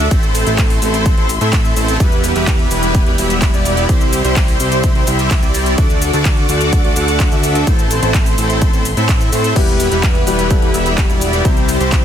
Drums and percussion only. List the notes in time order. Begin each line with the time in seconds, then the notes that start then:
0.11 kick, closed hi-hat, ride, shaker
0.23 closed hi-hat, shaker
0.35 open hi-hat, shaker
0.47 closed hi-hat, shaker
0.58 kick, clap, closed hi-hat, ride, shaker
0.70 open hi-hat
0.82 open hi-hat, shaker
0.94 closed hi-hat, shaker
1.06 kick, closed hi-hat, ride, shaker
1.18 closed hi-hat
1.29 open hi-hat, shaker
1.41 closed hi-hat, shaker
1.53 kick, clap, closed hi-hat, ride, shaker
1.65 closed hi-hat, shaker
1.77 open hi-hat, shaker
1.88 closed hi-hat, shaker
2.00 kick, closed hi-hat, ride, shaker
2.12 closed hi-hat, shaker
2.24 open hi-hat, shaker
2.36 closed hi-hat, shaker
2.47 kick, clap, closed hi-hat, ride, shaker
2.59 closed hi-hat
2.71 open hi-hat, shaker
2.83 closed hi-hat, shaker
2.95 kick, closed hi-hat, ride, shaker
3.06 closed hi-hat
3.18 open hi-hat, shaker
3.30 closed hi-hat, shaker
3.42 kick, clap, closed hi-hat, ride, shaker
3.54 closed hi-hat, shaker
3.65 open hi-hat, shaker
3.77 closed hi-hat, shaker
3.89 kick, closed hi-hat, ride, shaker
4.01 closed hi-hat, shaker
4.13 open hi-hat, shaker
4.25 closed hi-hat, shaker
4.36 kick, clap, closed hi-hat, ride, shaker
4.48 open hi-hat
4.60 open hi-hat, shaker
4.72 closed hi-hat, shaker
4.84 kick, closed hi-hat, ride, shaker
4.95 closed hi-hat
5.07 open hi-hat, shaker
5.19 closed hi-hat, shaker
5.31 kick, clap, closed hi-hat, ride, shaker
5.43 closed hi-hat, shaker
5.54 open hi-hat, shaker
5.66 closed hi-hat, shaker
5.78 kick, closed hi-hat, ride, shaker
5.90 closed hi-hat, shaker
6.02 open hi-hat, shaker
6.13 closed hi-hat, shaker
6.25 kick, clap, closed hi-hat, ride, shaker
6.37 closed hi-hat
6.49 open hi-hat, shaker
6.61 closed hi-hat, shaker
6.73 kick, closed hi-hat, ride, shaker
6.84 closed hi-hat
6.96 open hi-hat, shaker
7.08 closed hi-hat, shaker
7.20 kick, clap, closed hi-hat, ride, shaker
7.32 closed hi-hat, shaker
7.43 open hi-hat, shaker
7.55 closed hi-hat, shaker
7.67 kick, closed hi-hat, ride, shaker
7.79 closed hi-hat, shaker
7.91 open hi-hat, shaker
8.03 closed hi-hat, shaker
8.14 kick, clap, closed hi-hat, ride, shaker
8.26 open hi-hat, shaker
8.38 open hi-hat, shaker
8.50 closed hi-hat, shaker
8.62 kick, closed hi-hat, ride, shaker
8.73 closed hi-hat, shaker
8.85 open hi-hat, shaker
8.97 closed hi-hat, shaker
9.09 kick, clap, closed hi-hat, ride, shaker
9.21 closed hi-hat, shaker
9.33 open hi-hat, shaker
9.44 closed hi-hat, shaker
9.56 kick, closed hi-hat, crash, ride, shaker
9.68 closed hi-hat, shaker
9.80 open hi-hat, shaker
9.92 closed hi-hat, shaker
10.03 kick, clap, closed hi-hat, ride, shaker
10.15 closed hi-hat
10.27 open hi-hat, shaker
10.39 closed hi-hat, shaker
10.51 kick, closed hi-hat, ride, shaker
10.62 closed hi-hat
10.74 open hi-hat, shaker
10.86 closed hi-hat, shaker
10.98 kick, clap, closed hi-hat, ride, shaker
11.10 closed hi-hat, shaker
11.21 open hi-hat, shaker
11.33 closed hi-hat, shaker
11.45 kick, closed hi-hat, ride, shaker
11.57 closed hi-hat, shaker
11.69 open hi-hat, shaker
11.81 closed hi-hat, shaker
11.92 kick, clap, closed hi-hat, ride, shaker